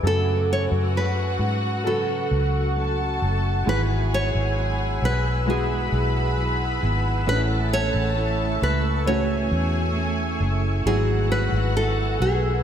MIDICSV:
0, 0, Header, 1, 7, 480
1, 0, Start_track
1, 0, Tempo, 909091
1, 22, Time_signature, 4, 2, 24, 8
1, 1942, Tempo, 898204
1, 6726, End_track
2, 0, Start_track
2, 0, Title_t, "Ambient pad"
2, 0, Program_c, 0, 92
2, 25, Note_on_c, 0, 66, 78
2, 27, Note_on_c, 0, 78, 69
2, 28, Note_on_c, 0, 85, 88
2, 1923, Note_off_c, 0, 66, 0
2, 1925, Note_off_c, 0, 85, 0
2, 1952, Note_on_c, 0, 68, 72
2, 1955, Note_on_c, 0, 88, 81
2, 1958, Note_on_c, 0, 83, 68
2, 3842, Note_off_c, 0, 78, 0
2, 3847, Note_off_c, 0, 68, 0
2, 3850, Note_off_c, 0, 83, 0
2, 3864, Note_on_c, 0, 85, 69
2, 3870, Note_on_c, 0, 76, 66
2, 3874, Note_on_c, 0, 57, 81
2, 5763, Note_off_c, 0, 85, 0
2, 5766, Note_off_c, 0, 76, 0
2, 5768, Note_off_c, 0, 57, 0
2, 5788, Note_on_c, 0, 78, 74
2, 5789, Note_on_c, 0, 71, 81
2, 5790, Note_on_c, 0, 80, 70
2, 6726, Note_off_c, 0, 71, 0
2, 6726, Note_off_c, 0, 78, 0
2, 6726, Note_off_c, 0, 80, 0
2, 6726, Note_off_c, 0, 88, 0
2, 6726, End_track
3, 0, Start_track
3, 0, Title_t, "Violin section"
3, 0, Program_c, 1, 48
3, 24, Note_on_c, 1, 66, 83
3, 24, Note_on_c, 1, 78, 86
3, 1443, Note_off_c, 1, 66, 0
3, 1443, Note_off_c, 1, 78, 0
3, 1465, Note_on_c, 1, 81, 91
3, 1466, Note_on_c, 1, 69, 75
3, 1933, Note_off_c, 1, 69, 0
3, 1933, Note_off_c, 1, 81, 0
3, 1940, Note_on_c, 1, 80, 86
3, 1942, Note_on_c, 1, 68, 89
3, 2881, Note_off_c, 1, 80, 0
3, 2882, Note_off_c, 1, 68, 0
3, 2898, Note_on_c, 1, 83, 87
3, 2899, Note_on_c, 1, 71, 76
3, 3840, Note_off_c, 1, 71, 0
3, 3840, Note_off_c, 1, 83, 0
3, 3858, Note_on_c, 1, 81, 93
3, 3859, Note_on_c, 1, 69, 83
3, 4797, Note_off_c, 1, 69, 0
3, 4797, Note_off_c, 1, 81, 0
3, 4819, Note_on_c, 1, 68, 86
3, 4821, Note_on_c, 1, 80, 99
3, 5762, Note_off_c, 1, 68, 0
3, 5763, Note_off_c, 1, 80, 0
3, 5783, Note_on_c, 1, 66, 82
3, 5783, Note_on_c, 1, 78, 93
3, 6726, Note_off_c, 1, 66, 0
3, 6726, Note_off_c, 1, 78, 0
3, 6726, End_track
4, 0, Start_track
4, 0, Title_t, "Nylon-string guitar"
4, 0, Program_c, 2, 24
4, 37, Note_on_c, 2, 69, 94
4, 276, Note_off_c, 2, 69, 0
4, 278, Note_on_c, 2, 73, 91
4, 341, Note_off_c, 2, 73, 0
4, 513, Note_on_c, 2, 71, 81
4, 985, Note_off_c, 2, 71, 0
4, 987, Note_on_c, 2, 69, 67
4, 1683, Note_off_c, 2, 69, 0
4, 1948, Note_on_c, 2, 71, 104
4, 2012, Note_off_c, 2, 71, 0
4, 2191, Note_on_c, 2, 73, 104
4, 2644, Note_off_c, 2, 73, 0
4, 2675, Note_on_c, 2, 71, 93
4, 2915, Note_off_c, 2, 71, 0
4, 2915, Note_on_c, 2, 68, 78
4, 3606, Note_off_c, 2, 68, 0
4, 3871, Note_on_c, 2, 71, 107
4, 3935, Note_off_c, 2, 71, 0
4, 4110, Note_on_c, 2, 73, 113
4, 4588, Note_off_c, 2, 73, 0
4, 4590, Note_on_c, 2, 71, 103
4, 4823, Note_off_c, 2, 71, 0
4, 4826, Note_on_c, 2, 73, 92
4, 5522, Note_off_c, 2, 73, 0
4, 5784, Note_on_c, 2, 68, 94
4, 6022, Note_off_c, 2, 68, 0
4, 6024, Note_on_c, 2, 71, 98
4, 6246, Note_off_c, 2, 71, 0
4, 6265, Note_on_c, 2, 69, 90
4, 6503, Note_off_c, 2, 69, 0
4, 6505, Note_on_c, 2, 68, 79
4, 6726, Note_off_c, 2, 68, 0
4, 6726, End_track
5, 0, Start_track
5, 0, Title_t, "Grand piano"
5, 0, Program_c, 3, 0
5, 0, Control_c, 3, 64, 127
5, 17, Note_on_c, 3, 69, 65
5, 22, Note_on_c, 3, 66, 63
5, 29, Control_c, 3, 64, 0
5, 127, Control_c, 3, 64, 127
5, 933, Note_off_c, 3, 69, 0
5, 935, Note_off_c, 3, 66, 0
5, 971, Note_on_c, 3, 69, 71
5, 978, Note_on_c, 3, 66, 69
5, 984, Note_on_c, 3, 71, 75
5, 1888, Note_off_c, 3, 69, 0
5, 1891, Note_off_c, 3, 66, 0
5, 1894, Note_off_c, 3, 71, 0
5, 1931, Note_on_c, 3, 56, 70
5, 1933, Note_on_c, 3, 64, 59
5, 1938, Note_on_c, 3, 44, 64
5, 1940, Note_on_c, 3, 66, 69
5, 1947, Control_c, 3, 64, 0
5, 2056, Control_c, 3, 64, 127
5, 2638, Note_off_c, 3, 44, 0
5, 2848, Note_off_c, 3, 56, 0
5, 2849, Note_off_c, 3, 64, 0
5, 2852, Note_off_c, 3, 66, 0
5, 2895, Note_on_c, 3, 56, 80
5, 2901, Note_on_c, 3, 64, 71
5, 2905, Note_on_c, 3, 66, 84
5, 3810, Note_off_c, 3, 56, 0
5, 3813, Note_off_c, 3, 64, 0
5, 3815, Note_off_c, 3, 66, 0
5, 3858, Note_on_c, 3, 57, 72
5, 3862, Note_on_c, 3, 45, 60
5, 3863, Note_on_c, 3, 61, 65
5, 3866, Note_on_c, 3, 62, 58
5, 3867, Control_c, 3, 64, 0
5, 3897, Note_off_c, 3, 62, 0
5, 3903, Note_on_c, 3, 64, 77
5, 3974, Control_c, 3, 64, 127
5, 4558, Note_off_c, 3, 45, 0
5, 4768, Note_off_c, 3, 57, 0
5, 4771, Note_off_c, 3, 61, 0
5, 4791, Note_off_c, 3, 64, 0
5, 4816, Note_on_c, 3, 57, 82
5, 4820, Note_on_c, 3, 61, 73
5, 4829, Note_on_c, 3, 66, 87
5, 5732, Note_off_c, 3, 57, 0
5, 5734, Note_off_c, 3, 61, 0
5, 5738, Note_off_c, 3, 66, 0
5, 5783, Note_on_c, 3, 54, 68
5, 5787, Control_c, 3, 64, 0
5, 5787, Note_on_c, 3, 64, 68
5, 5788, Note_on_c, 3, 44, 60
5, 5793, Note_on_c, 3, 66, 80
5, 5890, Control_c, 3, 64, 127
5, 6484, Note_off_c, 3, 44, 0
5, 6697, Note_off_c, 3, 54, 0
5, 6699, Note_off_c, 3, 64, 0
5, 6702, Note_off_c, 3, 66, 0
5, 6726, End_track
6, 0, Start_track
6, 0, Title_t, "Steel-string acoustic guitar"
6, 0, Program_c, 4, 25
6, 19, Note_on_c, 4, 42, 70
6, 23, Note_on_c, 4, 49, 76
6, 24, Note_on_c, 4, 54, 70
6, 27, Note_on_c, 4, 57, 78
6, 30, Note_on_c, 4, 61, 78
6, 496, Note_off_c, 4, 54, 0
6, 498, Note_on_c, 4, 54, 53
6, 499, Note_off_c, 4, 57, 0
6, 502, Note_off_c, 4, 42, 0
6, 503, Note_off_c, 4, 49, 0
6, 503, Note_off_c, 4, 61, 0
6, 505, Note_on_c, 4, 57, 64
6, 509, Note_on_c, 4, 61, 63
6, 515, Note_on_c, 4, 68, 64
6, 733, Note_off_c, 4, 68, 0
6, 739, Note_off_c, 4, 61, 0
6, 740, Note_on_c, 4, 68, 42
6, 741, Note_off_c, 4, 54, 0
6, 744, Note_off_c, 4, 57, 0
6, 746, Note_on_c, 4, 61, 42
6, 756, Note_on_c, 4, 54, 40
6, 981, Note_off_c, 4, 54, 0
6, 981, Note_off_c, 4, 68, 0
6, 981, Note_on_c, 4, 42, 68
6, 984, Note_off_c, 4, 61, 0
6, 985, Note_on_c, 4, 49, 74
6, 987, Note_on_c, 4, 54, 74
6, 992, Note_on_c, 4, 61, 79
6, 1457, Note_off_c, 4, 54, 0
6, 1459, Note_on_c, 4, 54, 54
6, 1462, Note_off_c, 4, 42, 0
6, 1464, Note_off_c, 4, 49, 0
6, 1464, Note_off_c, 4, 61, 0
6, 1466, Note_on_c, 4, 57, 60
6, 1471, Note_on_c, 4, 61, 60
6, 1701, Note_off_c, 4, 54, 0
6, 1704, Note_off_c, 4, 57, 0
6, 1704, Note_off_c, 4, 61, 0
6, 1711, Note_on_c, 4, 61, 48
6, 1716, Note_on_c, 4, 57, 51
6, 1719, Note_on_c, 4, 54, 49
6, 1940, Note_off_c, 4, 54, 0
6, 1940, Note_on_c, 4, 44, 73
6, 1943, Note_on_c, 4, 52, 80
6, 1945, Note_off_c, 4, 61, 0
6, 1947, Note_off_c, 4, 57, 0
6, 1947, Note_on_c, 4, 54, 76
6, 1949, Note_on_c, 4, 59, 79
6, 1951, Note_on_c, 4, 64, 76
6, 1953, Note_on_c, 4, 68, 90
6, 2411, Note_off_c, 4, 54, 0
6, 2417, Note_off_c, 4, 59, 0
6, 2418, Note_on_c, 4, 54, 55
6, 2421, Note_off_c, 4, 44, 0
6, 2423, Note_on_c, 4, 59, 63
6, 2427, Note_off_c, 4, 64, 0
6, 2427, Note_off_c, 4, 68, 0
6, 2429, Note_on_c, 4, 64, 65
6, 2434, Note_off_c, 4, 52, 0
6, 2435, Note_on_c, 4, 68, 64
6, 2899, Note_off_c, 4, 54, 0
6, 2900, Note_on_c, 4, 44, 74
6, 2902, Note_off_c, 4, 59, 0
6, 2906, Note_on_c, 4, 52, 74
6, 2906, Note_on_c, 4, 54, 78
6, 2907, Note_off_c, 4, 68, 0
6, 2910, Note_off_c, 4, 64, 0
6, 2910, Note_on_c, 4, 59, 80
6, 2912, Note_on_c, 4, 64, 79
6, 2914, Note_on_c, 4, 68, 90
6, 3373, Note_off_c, 4, 54, 0
6, 3379, Note_on_c, 4, 54, 59
6, 3380, Note_off_c, 4, 59, 0
6, 3381, Note_off_c, 4, 44, 0
6, 3387, Note_off_c, 4, 68, 0
6, 3387, Note_on_c, 4, 59, 56
6, 3391, Note_off_c, 4, 64, 0
6, 3393, Note_on_c, 4, 64, 61
6, 3395, Note_off_c, 4, 52, 0
6, 3397, Note_on_c, 4, 68, 56
6, 3610, Note_off_c, 4, 68, 0
6, 3616, Note_off_c, 4, 64, 0
6, 3616, Note_on_c, 4, 68, 59
6, 3620, Note_off_c, 4, 54, 0
6, 3622, Note_on_c, 4, 64, 48
6, 3624, Note_off_c, 4, 59, 0
6, 3630, Note_on_c, 4, 59, 57
6, 3634, Note_on_c, 4, 54, 51
6, 3856, Note_on_c, 4, 45, 85
6, 3858, Note_off_c, 4, 68, 0
6, 3860, Note_off_c, 4, 64, 0
6, 3860, Note_on_c, 4, 52, 87
6, 3861, Note_off_c, 4, 54, 0
6, 3861, Note_off_c, 4, 59, 0
6, 3863, Note_on_c, 4, 57, 72
6, 3864, Note_on_c, 4, 61, 81
6, 3866, Note_on_c, 4, 64, 79
6, 3868, Note_on_c, 4, 69, 85
6, 4330, Note_off_c, 4, 57, 0
6, 4336, Note_off_c, 4, 61, 0
6, 4336, Note_on_c, 4, 57, 61
6, 4337, Note_off_c, 4, 45, 0
6, 4342, Note_on_c, 4, 61, 67
6, 4343, Note_off_c, 4, 69, 0
6, 4347, Note_off_c, 4, 64, 0
6, 4349, Note_on_c, 4, 64, 72
6, 4353, Note_on_c, 4, 69, 71
6, 4813, Note_off_c, 4, 57, 0
6, 4815, Note_on_c, 4, 45, 75
6, 4816, Note_off_c, 4, 52, 0
6, 4817, Note_off_c, 4, 61, 0
6, 4818, Note_on_c, 4, 52, 75
6, 4820, Note_on_c, 4, 57, 78
6, 4822, Note_off_c, 4, 64, 0
6, 4822, Note_off_c, 4, 69, 0
6, 4823, Note_on_c, 4, 61, 91
6, 4824, Note_on_c, 4, 64, 85
6, 4828, Note_on_c, 4, 69, 87
6, 5287, Note_off_c, 4, 57, 0
6, 5294, Note_on_c, 4, 57, 53
6, 5295, Note_off_c, 4, 61, 0
6, 5297, Note_off_c, 4, 45, 0
6, 5301, Note_on_c, 4, 61, 58
6, 5303, Note_off_c, 4, 69, 0
6, 5304, Note_off_c, 4, 64, 0
6, 5307, Note_on_c, 4, 64, 63
6, 5311, Note_on_c, 4, 69, 63
6, 5530, Note_off_c, 4, 69, 0
6, 5536, Note_on_c, 4, 69, 62
6, 5537, Note_off_c, 4, 57, 0
6, 5537, Note_off_c, 4, 64, 0
6, 5541, Note_off_c, 4, 61, 0
6, 5544, Note_on_c, 4, 64, 53
6, 5548, Note_on_c, 4, 61, 55
6, 5553, Note_on_c, 4, 57, 44
6, 5779, Note_off_c, 4, 69, 0
6, 5781, Note_off_c, 4, 52, 0
6, 5781, Note_on_c, 4, 44, 83
6, 5783, Note_off_c, 4, 64, 0
6, 5783, Note_on_c, 4, 52, 72
6, 5785, Note_off_c, 4, 57, 0
6, 5785, Note_off_c, 4, 61, 0
6, 5787, Note_on_c, 4, 54, 79
6, 5788, Note_on_c, 4, 59, 86
6, 5792, Note_on_c, 4, 64, 87
6, 5793, Note_on_c, 4, 68, 92
6, 6256, Note_off_c, 4, 54, 0
6, 6258, Note_off_c, 4, 59, 0
6, 6258, Note_on_c, 4, 54, 62
6, 6261, Note_off_c, 4, 44, 0
6, 6263, Note_off_c, 4, 52, 0
6, 6263, Note_off_c, 4, 64, 0
6, 6264, Note_on_c, 4, 59, 63
6, 6269, Note_on_c, 4, 64, 66
6, 6274, Note_off_c, 4, 68, 0
6, 6496, Note_off_c, 4, 64, 0
6, 6498, Note_on_c, 4, 68, 46
6, 6500, Note_off_c, 4, 54, 0
6, 6503, Note_off_c, 4, 59, 0
6, 6503, Note_on_c, 4, 64, 38
6, 6509, Note_on_c, 4, 59, 40
6, 6514, Note_on_c, 4, 54, 34
6, 6726, Note_off_c, 4, 54, 0
6, 6726, Note_off_c, 4, 59, 0
6, 6726, Note_off_c, 4, 64, 0
6, 6726, Note_off_c, 4, 68, 0
6, 6726, End_track
7, 0, Start_track
7, 0, Title_t, "Fingered electric bass"
7, 0, Program_c, 5, 33
7, 17, Note_on_c, 5, 42, 84
7, 359, Note_off_c, 5, 42, 0
7, 378, Note_on_c, 5, 42, 81
7, 720, Note_off_c, 5, 42, 0
7, 736, Note_on_c, 5, 44, 77
7, 1198, Note_off_c, 5, 44, 0
7, 1221, Note_on_c, 5, 37, 88
7, 1681, Note_off_c, 5, 37, 0
7, 1700, Note_on_c, 5, 30, 84
7, 1923, Note_off_c, 5, 30, 0
7, 1939, Note_on_c, 5, 32, 101
7, 2279, Note_off_c, 5, 32, 0
7, 2301, Note_on_c, 5, 32, 88
7, 2639, Note_off_c, 5, 32, 0
7, 2661, Note_on_c, 5, 35, 79
7, 3119, Note_off_c, 5, 35, 0
7, 3142, Note_on_c, 5, 35, 89
7, 3600, Note_off_c, 5, 35, 0
7, 3626, Note_on_c, 5, 32, 82
7, 3846, Note_off_c, 5, 32, 0
7, 3865, Note_on_c, 5, 33, 93
7, 4200, Note_off_c, 5, 33, 0
7, 4222, Note_on_c, 5, 33, 87
7, 4558, Note_off_c, 5, 33, 0
7, 4584, Note_on_c, 5, 37, 75
7, 5039, Note_off_c, 5, 37, 0
7, 5061, Note_on_c, 5, 40, 91
7, 5520, Note_off_c, 5, 40, 0
7, 5536, Note_on_c, 5, 30, 93
7, 5762, Note_off_c, 5, 30, 0
7, 5778, Note_on_c, 5, 32, 102
7, 6119, Note_off_c, 5, 32, 0
7, 6134, Note_on_c, 5, 32, 91
7, 6477, Note_off_c, 5, 32, 0
7, 6498, Note_on_c, 5, 35, 78
7, 6726, Note_off_c, 5, 35, 0
7, 6726, End_track
0, 0, End_of_file